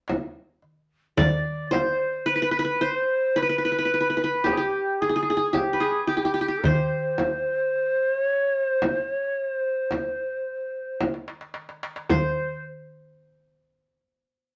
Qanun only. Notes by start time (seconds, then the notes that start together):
1.17 D5
1.71 C5
2.26 B4
2.36 B4
2.42 B4
2.51 B4
2.59 B4
2.65 B4
2.81 C5
3.36 B4
3.42 B4
3.49 B4
3.58 B4
3.65 B4
3.72 B4
3.79 B4
3.85 B4
3.94 B4
4.01 B4
4.10 B4
4.17 B4
4.24 B4
4.44 G4
4.57 G4
5.02 G#4
5.09 G#4
5.16 G#4
5.23 G#4
5.30 G#4
5.37 G#4
5.53 G4
5.73 B4
5.80 G#4
6.07 G4
6.17 G4
6.25 G4
6.34 G4
6.41 G4
6.48 G4
6.65 C5
12.10 C5